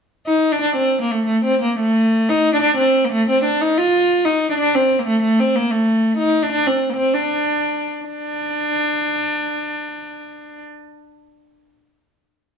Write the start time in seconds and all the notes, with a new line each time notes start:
0.26 D#4
0.52 D4
0.61 D4
0.77 C4
1.01 A#3
1.11 A3
1.26 A3
1.44 C4
1.62 A#3
1.79 A3
2.29 D#4
2.53 D4
2.61 D4
2.77 C4
3.05 A#3
3.12 A3
3.29 C4
3.44 D4
3.61 D#4
3.78 F4
4.25 D#4
4.50 D4
4.58 D4
4.75 C4
4.99 A#3
5.07 A3
5.22 A3
5.39 C4
5.55 A#3
5.71 A3
6.18 D#4
6.42 D4
6.52 D4
6.67 C4
6.90 A#3
6.97 C4
7.14 D4
8.05 D4